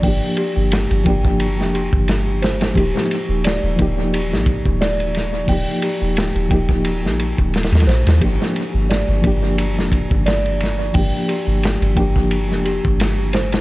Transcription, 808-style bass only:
X:1
M:4/4
L:1/16
Q:"Swing 16ths" 1/4=88
K:Gm
V:1 name="808-style bass" clef=bass
G,,, z2 G,,,2 G,,, G,,,3 F,,,2 G,,,4- G,,, | E,,, z2 E,,,2 E,,, E,,,3 B,,,2 E,,,4- E,,, | E,,, z2 E,,,2 E,,, E,,,3 B,,,2 E,,,2 E,, B,,, E,, | G,,, z2 G,,,2 G,,, G,,,3 F,,,2 G,,,4- G,,, |
G,,, z2 G,,,2 G,,, G,,,3 F,,,2 G,,,4- G,,, |]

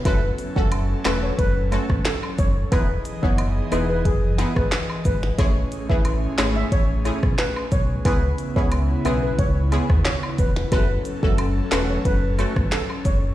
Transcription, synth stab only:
X:1
M:4/4
L:1/16
Q:1/4=90
K:F#dor
V:1 name="Synth stab"
[A,CFA] z2 [A,CFA]3 [A,CFA]2 z2 [A,CFA] z4 z | [B,DEG] z2 [B,DEG]3 [B,DEG]2 z2 [B,DEG] z4 z | [A,CEG] z2 [A,CEG]3 [A,CEG]2 z2 [A,CEG] z4 z | [B,CEG] z2 [B,CEG]3 [B,CEG]2 z2 [B,CEG] z4 z |
[A,CFA] z2 [A,CFA]3 [A,CFA]2 z2 [A,CFA] z4 z |]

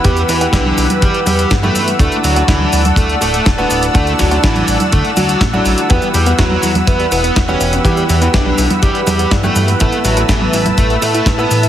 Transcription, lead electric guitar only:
X:1
M:4/4
L:1/16
Q:1/4=123
K:Em
V:1 name="Lead electric guitar"
[G,G] z [E,E] z [D,D]3 z [G,G] z [G,G]2 z [A,A]2 z | [A,A] z [F,F] z [E,E]3 z [A,A] z [A,A]2 z [B,B]2 z | [A,A] z [F,F] z [E,E]3 z [A,A] z [F,F]2 z [F,F]2 z | [B,B] z [G,G] z [F,F]3 z [B,B] z [B,B]2 z [^C^c]2 z |
[G,G] z [E,E] z [D,D]3 z [G,G] z [G,G]2 z [A,A]2 z | [A,A] z [F,F] z [E,E]3 z [A,A] z [A,A]2 z [B,B]2 z |]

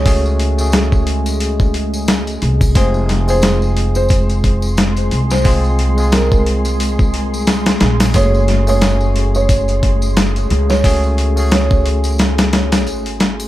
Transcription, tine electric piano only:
X:1
M:4/4
L:1/16
Q:"Swing 16ths" 1/4=89
K:Gblyd
V:1 name="Tine electric piano"
[=A,DG_A]3 [=A,DG_A]12- [=A,DG_A] | [A,CFA]3 [A,CFA]12- [A,CFA] | [A,CFA]3 [A,CFA]12- [A,CFA] | [=A,DG_A]3 [=A,DG_A]12- [=A,DG_A] |
[=A,DG_A]3 [=A,DG_A]12- [=A,DG_A] |]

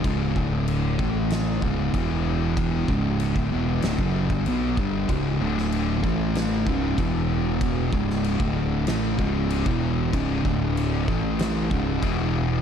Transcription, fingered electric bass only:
X:1
M:4/4
L:1/16
Q:1/4=95
K:C#phr
V:1 name="Fingered electric bass" clef=bass
C,,,2 D,,,4 A,,,4 C,,,2 E,,,4- | E,,,2 C,,,3 D,,, E,,,2 D,,, F,,,2 =G,,, B,,,2 G,,,2 | C,,,2 D,,,4 A,,,4 C,,,2 E,,,4- | E,,,2 C,,,3 D,,,3 A,,,2 C,,,3 E,,,3 |
C,,,2 D,,,4 A,,,4 C,,,2 E,,,4 |]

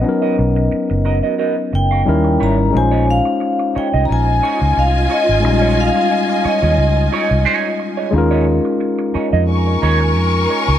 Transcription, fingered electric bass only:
X:1
M:4/4
L:1/16
Q:"Swing 16ths" 1/4=89
K:Bbdor
V:1 name="Fingered electric bass" clef=bass
z2 =B,,,2 z ^F,,,2 z3 F,,,2 E,,2 A,,,2 | B,,,3 z4 C,, B,,,2 z D,, C,,2 z A,,, | B,,,3 z4 E,, D,,2 z C,, z4 | E,,3 z4 F,,3 E,,2 F,,2 z D,, |]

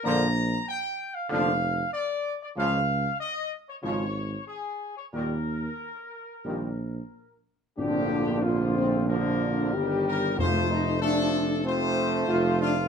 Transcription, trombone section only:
X:1
M:4/4
L:1/8
Q:1/4=94
K:Bb
V:1 name="Trombone section" clef=bass
[D,F,] z3 [D,F,] z3 | [_D,F,] z3 [D,F,] z3 | [B,,E,] z3 [B,,E,] z3 | [D,F,]2 [D,F,]2 [D,F,]2 [E,G,]2 |
[F,A,]2 [F,A,]2 [F,A,]4 |]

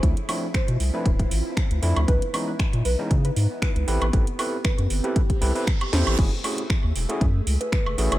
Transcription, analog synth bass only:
X:1
M:4/4
L:1/16
Q:"Swing 16ths" 1/4=117
K:Alyd
V:1 name="Analog synth bass" clef=bass
=D,, z4 B,, =C,, z =D,,,2 A,,, z2 D,, =F,, D,, | C,, z4 ^A,, B,,, z C,2 G,, z2 C,, =A,,, A,,, | A,,, z4 F,, =G,,, z3 =C,, z3 E,, A,,, | F,,, z4 D,, E,,, z F,,2 C,, z2 F,,, A,,, F,,, |]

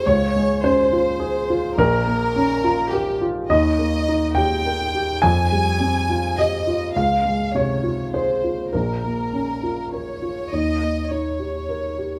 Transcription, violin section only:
X:1
M:3/4
L:1/8
Q:1/4=104
K:Bbdor
V:1 name="Violin section"
d2 c4 | B4 G z | e3 g3 | a4 e2 |
f2 d2 c2 | B4 d2 | e2 d4 |]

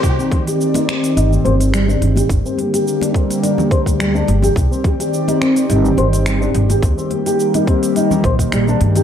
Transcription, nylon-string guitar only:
X:1
M:4/4
L:1/16
Q:"Swing 16ths" 1/4=106
K:Cm
V:1 name="Nylon-string guitar"
z C z G2 E C2 E z c z G, D z G | z C z G2 D C2 D z c z G, D z G | z C z G2 E C2 E z c z G, D z G | z C z G2 E C2 E z c z G, D z G |]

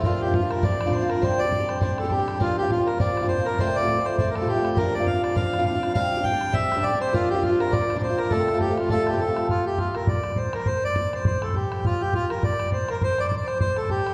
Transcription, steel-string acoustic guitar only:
X:1
M:4/4
L:1/16
Q:"Swing" 1/4=203
K:Bblyd
V:1 name="Steel-string acoustic guitar"
[B,,F,CDF]3 [CDF]2 [CDF]3 [F,CDF]3 [B,,F,CDF]2 [CDF]3 | [C,G,CDG]3 [CDG]2 [CDG]3 [G,CDG]3 [C,G,CDG]2 [CDG]3 | [B,,F,CDF]3 [CDF]2 [CDF]3 [F,CDF]3 [B,,F,CDF]2 [CDF]3 | [F,,C,G,A,CF]3 [G,A,CF]2 [G,A,CF]3 [G,A,CF]3 [F,,C,G,A,CF]2 [G,A,CF]3 |
[B,,F,CDF]3 [CDF]2 [CDF]3 [F,CDF]3 [B,,F,CDF]2 [CDF]3 | [C,G,CDG]3 [CDG]2 [CDG]3 [G,CDG]3 [C,G,CDG]2 [CDG]3 | [B,,F,CDF]3 [CDF]2 [CDF]3 [F,CDF]3 [B,,F,CDF]2 [CDF]3 | [F,,C,G,A,CF]3 [G,A,CF]2 [G,A,CF]3 [G,A,CF]3 [F,,C,G,A,CF]2 [G,A,CF]3 |
z16 | z16 | z16 | z16 |]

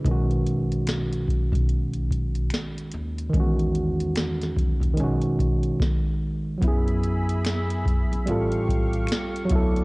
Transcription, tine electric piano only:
X:1
M:4/4
L:1/8
Q:"Swing 16ths" 1/4=73
K:B
V:1 name="Tine electric piano"
[C,D,G,CF]8 | [D,G,CF]4 [D,G,CF]4 | [F,B,EG]4 [=G,^B,^E=A]3 [F,=B,=EA] |]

